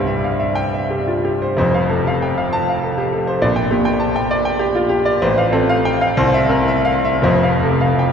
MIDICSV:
0, 0, Header, 1, 2, 480
1, 0, Start_track
1, 0, Key_signature, -1, "major"
1, 0, Tempo, 664452
1, 1144, Time_signature, 6, 3, 24, 8
1, 1612, Tempo, 604839
1, 4492, Tempo, 650759
1, 4972, Tempo, 747198
1, 6009, End_track
2, 0, Start_track
2, 0, Title_t, "Grand piano"
2, 0, Program_c, 0, 0
2, 0, Control_c, 0, 64, 127
2, 0, Note_on_c, 0, 36, 71
2, 0, Note_on_c, 0, 43, 47
2, 0, Note_on_c, 0, 67, 52
2, 0, Note_on_c, 0, 72, 60
2, 0, Note_on_c, 0, 76, 52
2, 49, Note_off_c, 0, 76, 0
2, 49, Note_on_c, 0, 76, 53
2, 124, Note_off_c, 0, 67, 0
2, 174, Note_on_c, 0, 77, 44
2, 246, Note_off_c, 0, 76, 0
2, 286, Note_on_c, 0, 76, 48
2, 296, Note_off_c, 0, 77, 0
2, 318, Note_off_c, 0, 43, 0
2, 400, Note_on_c, 0, 79, 74
2, 484, Note_off_c, 0, 76, 0
2, 535, Note_on_c, 0, 76, 49
2, 601, Note_off_c, 0, 79, 0
2, 654, Note_on_c, 0, 67, 48
2, 729, Note_off_c, 0, 76, 0
2, 778, Note_on_c, 0, 65, 44
2, 851, Note_off_c, 0, 67, 0
2, 900, Note_on_c, 0, 67, 49
2, 902, Note_off_c, 0, 65, 0
2, 1025, Note_off_c, 0, 72, 0
2, 1025, Note_on_c, 0, 72, 54
2, 1095, Note_off_c, 0, 67, 0
2, 1116, Note_off_c, 0, 36, 0
2, 1132, Note_off_c, 0, 72, 0
2, 1133, Note_on_c, 0, 29, 68
2, 1141, Note_on_c, 0, 41, 75
2, 1143, Note_on_c, 0, 72, 62
2, 1159, Control_c, 0, 64, 0
2, 1259, Note_on_c, 0, 77, 57
2, 1280, Control_c, 0, 64, 127
2, 1332, Note_off_c, 0, 72, 0
2, 1369, Note_on_c, 0, 69, 55
2, 1375, Note_on_c, 0, 48, 52
2, 1449, Note_off_c, 0, 77, 0
2, 1497, Note_on_c, 0, 77, 58
2, 1560, Note_off_c, 0, 69, 0
2, 1606, Note_on_c, 0, 79, 52
2, 1687, Note_off_c, 0, 77, 0
2, 1727, Note_on_c, 0, 77, 54
2, 1733, Note_off_c, 0, 79, 0
2, 1758, Note_off_c, 0, 48, 0
2, 1846, Note_on_c, 0, 81, 86
2, 1925, Note_off_c, 0, 77, 0
2, 1975, Note_on_c, 0, 77, 59
2, 2043, Note_off_c, 0, 81, 0
2, 2089, Note_on_c, 0, 69, 52
2, 2165, Note_off_c, 0, 77, 0
2, 2205, Note_on_c, 0, 67, 53
2, 2281, Note_off_c, 0, 69, 0
2, 2321, Note_on_c, 0, 69, 55
2, 2328, Note_off_c, 0, 67, 0
2, 2439, Note_on_c, 0, 72, 61
2, 2515, Note_off_c, 0, 69, 0
2, 2530, Note_off_c, 0, 29, 0
2, 2535, Note_off_c, 0, 41, 0
2, 2552, Note_on_c, 0, 34, 73
2, 2553, Note_on_c, 0, 74, 67
2, 2562, Note_off_c, 0, 72, 0
2, 2583, Control_c, 0, 64, 0
2, 2666, Note_on_c, 0, 79, 63
2, 2684, Control_c, 0, 64, 127
2, 2749, Note_off_c, 0, 74, 0
2, 2783, Note_on_c, 0, 67, 61
2, 2788, Note_on_c, 0, 46, 52
2, 2865, Note_off_c, 0, 79, 0
2, 2898, Note_on_c, 0, 79, 71
2, 2983, Note_off_c, 0, 67, 0
2, 3013, Note_on_c, 0, 81, 71
2, 3099, Note_off_c, 0, 79, 0
2, 3140, Note_on_c, 0, 79, 69
2, 3145, Note_off_c, 0, 81, 0
2, 3174, Note_off_c, 0, 46, 0
2, 3260, Note_on_c, 0, 74, 75
2, 3338, Note_off_c, 0, 79, 0
2, 3375, Note_on_c, 0, 79, 73
2, 3457, Note_off_c, 0, 74, 0
2, 3487, Note_on_c, 0, 67, 65
2, 3575, Note_off_c, 0, 79, 0
2, 3613, Note_on_c, 0, 65, 57
2, 3691, Note_off_c, 0, 67, 0
2, 3725, Note_on_c, 0, 67, 66
2, 3742, Note_off_c, 0, 65, 0
2, 3852, Note_on_c, 0, 74, 69
2, 3932, Note_off_c, 0, 67, 0
2, 3954, Note_off_c, 0, 34, 0
2, 3982, Note_on_c, 0, 72, 79
2, 3984, Note_off_c, 0, 74, 0
2, 3985, Note_on_c, 0, 33, 89
2, 4009, Control_c, 0, 64, 0
2, 4108, Note_on_c, 0, 77, 69
2, 4133, Control_c, 0, 64, 127
2, 4185, Note_off_c, 0, 72, 0
2, 4226, Note_on_c, 0, 69, 73
2, 4228, Note_on_c, 0, 60, 70
2, 4312, Note_off_c, 0, 77, 0
2, 4360, Note_on_c, 0, 77, 82
2, 4434, Note_off_c, 0, 69, 0
2, 4486, Note_on_c, 0, 79, 82
2, 4560, Note_off_c, 0, 77, 0
2, 4604, Note_on_c, 0, 77, 76
2, 4607, Note_off_c, 0, 79, 0
2, 4628, Note_off_c, 0, 60, 0
2, 4703, Note_off_c, 0, 33, 0
2, 4721, Note_on_c, 0, 36, 97
2, 4723, Note_on_c, 0, 72, 82
2, 4726, Note_off_c, 0, 77, 0
2, 4740, Control_c, 0, 64, 0
2, 4845, Note_on_c, 0, 76, 76
2, 4896, Control_c, 0, 64, 127
2, 4920, Note_off_c, 0, 72, 0
2, 4958, Note_on_c, 0, 60, 62
2, 4960, Note_on_c, 0, 70, 71
2, 5037, Note_off_c, 0, 76, 0
2, 5081, Note_on_c, 0, 76, 74
2, 5148, Note_off_c, 0, 70, 0
2, 5189, Note_on_c, 0, 77, 74
2, 5270, Note_off_c, 0, 76, 0
2, 5315, Note_off_c, 0, 77, 0
2, 5315, Note_on_c, 0, 76, 70
2, 5339, Note_off_c, 0, 60, 0
2, 5421, Note_off_c, 0, 36, 0
2, 5428, Note_on_c, 0, 29, 74
2, 5436, Note_on_c, 0, 72, 69
2, 5438, Note_on_c, 0, 41, 81
2, 5442, Note_off_c, 0, 76, 0
2, 5457, Control_c, 0, 64, 0
2, 5565, Note_on_c, 0, 77, 61
2, 5575, Control_c, 0, 64, 127
2, 5639, Note_off_c, 0, 72, 0
2, 5689, Note_on_c, 0, 48, 56
2, 5689, Note_on_c, 0, 69, 61
2, 5763, Note_off_c, 0, 77, 0
2, 5805, Note_on_c, 0, 77, 62
2, 5884, Note_off_c, 0, 69, 0
2, 5922, Note_on_c, 0, 79, 53
2, 5999, Note_off_c, 0, 77, 0
2, 6009, Note_off_c, 0, 29, 0
2, 6009, Note_off_c, 0, 41, 0
2, 6009, Note_off_c, 0, 48, 0
2, 6009, Note_off_c, 0, 79, 0
2, 6009, End_track
0, 0, End_of_file